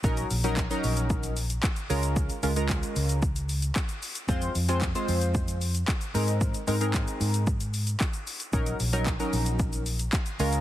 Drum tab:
HH |-xox-xox-xox-xox|-xox-xox-xox-xox|-xox-xox-xox-xox|-xox-xox-xox-xox|
SH |xxxxxxxxxxxxxxxx|xxxxxxxxxxxxxxxx|xxxxxxxxxxxxxxxx|xxxxxxxxxxxxxxxx|
CP |----x-------x---|----x-------x---|----x-------x---|----x-------x---|
BD |o---o---o---o---|o---o---o---o---|o---o---o---o---|o---o---o---o---|

HH |-xox-xox-xox-xox|
SH |xxxxxxxxxxxxxxxx|
CP |----x-------x---|
BD |o---o---o---o---|